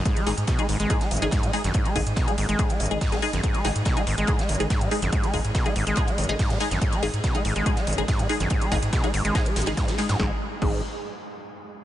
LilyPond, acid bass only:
\new Staff \with { instrumentName = "Acid bass" } { \clef bass \time 4/4 \key gis \minor \tempo 4 = 142 gis,16 gis16 fis,16 r16 b,16 gis16 gis,16 gis16 gis,16 gis16 fis,16 dis16 gis,16 gis16 r16 fis,16 | gis,16 gis16 fis,16 r16 b,16 gis16 gis,16 gis16 gis,16 gis16 fis,16 dis16 gis,16 gis16 r16 fis,16 | gis,16 gis16 fis,16 r16 b,16 gis16 gis,16 gis16 gis,16 gis16 fis,16 dis16 gis,16 gis16 r16 fis,16 | gis,16 gis16 fis,16 r16 b,16 gis16 gis,16 gis16 gis,16 gis16 fis,16 dis16 gis,16 gis16 r16 fis,16 |
gis,16 gis16 fis,16 r16 b,16 gis16 gis,16 gis16 gis,16 gis16 fis,16 dis16 gis,16 gis16 r16 fis,16 | gis,16 gis16 fis,16 r16 b,16 gis16 gis,16 gis16 gis,16 gis16 fis,16 dis16 gis,16 gis16 r16 fis,16 | gis,16 r8. gis,8 r2 r8 | }